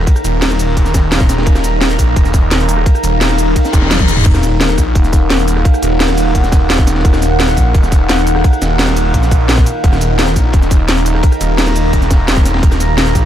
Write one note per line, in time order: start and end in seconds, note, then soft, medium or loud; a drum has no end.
0.00 13.25 D#4 medium
0.00 13.25 A#4 medium
0.00 13.25 F5 medium
0.00 4.23 A#5 loud
0.07 kick loud
0.07 closed hi-hat medium
0.07 ride medium
0.16 cross-stick soft
0.16 ride soft
0.16 shaker soft
0.24 0.75 D#1 medium
0.24 closed hi-hat medium
0.24 ride medium
0.24 shaker medium
0.41 snare loud
0.41 closed hi-hat medium
0.41 open hi-hat medium
0.51 cross-stick soft
0.51 snare soft
0.51 shaker soft
0.59 closed hi-hat medium
0.59 ride medium
0.59 shaker medium
0.77 1.10 D#1 loud
0.77 kick medium
0.77 closed hi-hat medium
0.77 ride medium
0.85 snare medium
0.85 shaker soft
0.94 kick loud
0.94 snare loud
0.94 closed hi-hat medium
0.94 ride medium
0.94 shaker medium
1.04 ride soft
1.12 1.45 D#1 loud
1.12 snare loud
1.12 closed hi-hat medium
1.12 ride medium
1.20 kick loud
1.20 shaker soft
1.29 snare loud
1.29 closed hi-hat medium
1.29 ride medium
1.29 shaker medium
1.38 snare medium
1.38 ride medium
1.42 snare medium
1.42 ride medium
1.46 1.98 D#1 loud
1.46 kick loud
1.46 closed hi-hat medium
1.46 ride loud
1.55 cross-stick soft
1.55 snare soft
1.55 shaker soft
1.64 snare medium
1.64 closed hi-hat loud
1.64 ride medium
1.64 shaker medium
1.81 snare loud
1.81 closed hi-hat medium
1.81 ride loud
1.90 cross-stick soft
1.90 shaker soft
1.98 2.15 A#1 medium
1.98 kick medium
1.98 snare soft
1.98 closed hi-hat loud
1.98 ride medium
1.98 shaker medium
2.16 2.50 D#1 loud
2.16 kick loud
2.16 closed hi-hat medium
2.16 ride loud
2.25 snare soft
2.25 shaker soft
2.34 kick loud
2.34 snare medium
2.34 closed hi-hat loud
2.34 ride medium
2.34 shaker medium
2.51 2.85 D#1 loud
2.51 snare loud
2.51 closed hi-hat medium
2.51 ride medium
2.60 shaker soft
2.69 closed hi-hat loud
2.69 shaker medium
2.77 cross-stick medium
2.86 kick loud
2.86 closed hi-hat medium
2.86 ride medium
2.95 cross-stick soft
2.95 ride soft
2.95 shaker soft
3.04 3.55 D#1 medium
3.04 closed hi-hat loud
3.04 ride medium
3.04 shaker medium
3.21 snare loud
3.21 closed hi-hat medium
3.21 open hi-hat medium
3.30 cross-stick medium
3.30 snare soft
3.30 shaker soft
3.38 closed hi-hat loud
3.38 shaker medium
3.56 kick medium
3.56 closed hi-hat medium
3.56 ride medium
3.56 reverse cymbal medium
3.65 snare medium
3.65 shaker soft
3.73 4.24 D#1 loud
3.73 kick loud
3.73 snare loud
3.73 closed hi-hat loud
3.73 ride medium
3.73 shaker medium
3.82 snare medium
3.82 ride medium
3.86 snare loud
3.86 ride medium
3.90 snare loud
3.90 closed hi-hat medium
3.90 high tom medium
3.90 ride medium
4.00 kick loud
4.00 high tom medium
4.00 shaker soft
4.08 snare medium
4.08 closed hi-hat loud
4.08 ride medium
4.08 shaker medium
4.17 mid tom medium
4.17 ride medium
4.26 4.77 D#1 loud
4.26 9.82 F#5 medium
4.26 kick loud
4.26 closed hi-hat medium
4.26 crash medium
4.26 ride loud
4.34 cross-stick soft
4.34 snare soft
4.34 shaker soft
4.43 snare medium
4.43 closed hi-hat loud
4.43 ride medium
4.43 shaker medium
4.60 snare loud
4.60 closed hi-hat medium
4.60 ride medium
4.69 cross-stick medium
4.69 shaker soft
4.78 4.94 A#1 loud
4.78 kick medium
4.78 snare soft
4.78 closed hi-hat loud
4.78 ride medium
4.78 shaker medium
4.95 5.29 D#1 loud
4.95 kick loud
4.95 closed hi-hat medium
4.95 ride medium
5.04 snare soft
5.04 shaker soft
5.13 kick loud
5.13 snare medium
5.13 closed hi-hat loud
5.13 ride medium
5.13 shaker medium
5.30 5.64 D#1 loud
5.30 snare loud
5.30 closed hi-hat medium
5.30 ride medium
5.39 shaker soft
5.47 snare soft
5.47 closed hi-hat loud
5.47 ride medium
5.47 shaker medium
5.56 cross-stick medium
5.56 snare soft
5.65 kick loud
5.65 closed hi-hat medium
5.65 ride medium
5.74 cross-stick soft
5.74 ride soft
5.74 shaker soft
5.82 6.34 D#1 loud
5.82 closed hi-hat loud
5.82 ride medium
5.82 shaker medium
6.00 snare loud
6.00 closed hi-hat medium
6.00 open hi-hat medium
6.09 cross-stick medium
6.09 snare soft
6.09 shaker soft
6.18 closed hi-hat medium
6.18 ride medium
6.18 shaker medium
6.35 6.69 D#1 loud
6.35 kick medium
6.35 closed hi-hat medium
6.35 ride medium
6.44 snare medium
6.44 shaker soft
6.52 kick loud
6.52 snare loud
6.52 closed hi-hat loud
6.52 ride medium
6.52 shaker medium
6.61 ride soft
6.70 7.03 D#1 loud
6.70 snare loud
6.70 closed hi-hat medium
6.70 ride medium
6.79 kick loud
6.79 shaker soft
6.87 snare loud
6.87 closed hi-hat loud
6.87 ride medium
6.87 shaker medium
6.95 snare medium
6.95 ride medium
7.00 snare medium
7.00 ride medium
7.05 7.56 D#1 loud
7.05 kick loud
7.05 closed hi-hat medium
7.05 ride medium
7.13 cross-stick soft
7.13 snare soft
7.13 shaker soft
7.22 snare medium
7.22 closed hi-hat medium
7.22 ride medium
7.22 shaker medium
7.40 snare loud
7.40 closed hi-hat medium
7.40 ride loud
7.48 cross-stick medium
7.48 shaker soft
7.57 7.73 A#1 loud
7.57 kick medium
7.57 snare soft
7.57 closed hi-hat medium
7.57 ride medium
7.57 shaker medium
7.75 8.08 D#1 loud
7.75 kick loud
7.75 closed hi-hat medium
7.75 ride loud
7.83 snare medium
7.83 shaker soft
7.92 kick loud
7.92 snare medium
7.92 closed hi-hat medium
7.92 ride medium
7.92 shaker medium
8.09 8.43 D#1 loud
8.09 snare loud
8.09 closed hi-hat medium
8.09 ride medium
8.18 shaker soft
8.26 snare soft
8.26 closed hi-hat medium
8.26 ride medium
8.26 shaker medium
8.35 cross-stick medium
8.35 snare medium
8.44 kick loud
8.44 closed hi-hat medium
8.44 ride loud
8.53 cross-stick soft
8.53 ride soft
8.53 shaker soft
8.62 9.13 D#1 medium
8.62 snare loud
8.62 closed hi-hat medium
8.62 ride medium
8.62 shaker medium
8.79 snare loud
8.79 closed hi-hat medium
8.79 open hi-hat medium
8.87 cross-stick soft
8.87 snare soft
8.87 shaker soft
8.97 closed hi-hat medium
8.97 ride medium
8.97 shaker medium
9.14 9.65 A#1 loud
9.14 kick medium
9.14 closed hi-hat medium
9.14 ride loud
9.23 snare medium
9.23 shaker soft
9.31 kick loud
9.31 closed hi-hat medium
9.31 ride medium
9.31 shaker medium
9.41 ride soft
9.48 snare loud
9.48 closed hi-hat medium
9.48 ride medium
9.57 kick loud
9.57 snare medium
9.57 shaker soft
9.66 closed hi-hat medium
9.66 ride medium
9.66 shaker medium
9.84 10.35 D#1 loud
9.84 13.25 A#5 loud
9.84 kick loud
9.84 closed hi-hat medium
9.84 ride loud
9.93 cross-stick soft
9.93 snare soft
9.93 shaker soft
10.01 snare medium
10.01 closed hi-hat medium
10.01 ride medium
10.01 shaker medium
10.19 snare loud
10.19 closed hi-hat medium
10.19 ride medium
10.27 cross-stick soft
10.27 shaker soft
10.36 10.52 A#1 loud
10.36 kick medium
10.36 snare soft
10.36 closed hi-hat medium
10.36 ride medium
10.36 shaker medium
10.53 10.87 D#1 loud
10.53 kick loud
10.53 closed hi-hat medium
10.53 ride medium
10.62 snare soft
10.62 shaker soft
10.71 kick loud
10.71 snare medium
10.71 closed hi-hat medium
10.71 ride medium
10.71 shaker medium
10.88 11.22 D#1 loud
10.88 snare loud
10.88 closed hi-hat medium
10.88 ride medium
10.97 shaker soft
11.06 snare medium
11.06 closed hi-hat medium
11.06 ride medium
11.06 shaker medium
11.15 cross-stick medium
11.15 snare soft
11.23 kick loud
11.23 closed hi-hat medium
11.23 ride loud
11.32 cross-stick soft
11.32 ride soft
11.32 shaker soft
11.41 11.92 D#1 loud
11.41 closed hi-hat medium
11.41 ride medium
11.41 shaker medium
11.58 snare loud
11.58 closed hi-hat medium
11.58 open hi-hat medium
11.67 cross-stick soft
11.67 snare soft
11.67 shaker soft
11.75 closed hi-hat medium
11.75 ride medium
11.75 shaker medium
11.93 12.27 D#1 loud
11.93 kick medium
11.93 closed hi-hat medium
11.93 ride medium
12.02 snare medium
12.02 shaker soft
12.11 kick loud
12.11 snare loud
12.11 closed hi-hat medium
12.11 ride medium
12.11 shaker medium
12.20 ride soft
12.28 12.61 D#1 loud
12.28 snare loud
12.28 closed hi-hat medium
12.28 ride medium
12.37 kick loud
12.37 shaker soft
12.45 snare loud
12.45 closed hi-hat medium
12.45 ride medium
12.45 shaker medium
12.54 snare medium
12.54 ride medium
12.58 snare medium
12.58 ride medium
12.63 13.14 D#1 loud
12.63 kick loud
12.63 closed hi-hat medium
12.63 ride medium
12.72 cross-stick soft
12.72 snare soft
12.72 shaker soft
12.80 snare medium
12.80 closed hi-hat loud
12.80 ride medium
12.80 shaker medium
12.97 snare loud
12.97 closed hi-hat medium
12.97 ride loud
13.07 cross-stick soft
13.07 shaker soft
13.15 13.25 A#1 medium
13.15 kick medium
13.15 snare soft
13.15 closed hi-hat loud
13.15 ride medium
13.15 shaker medium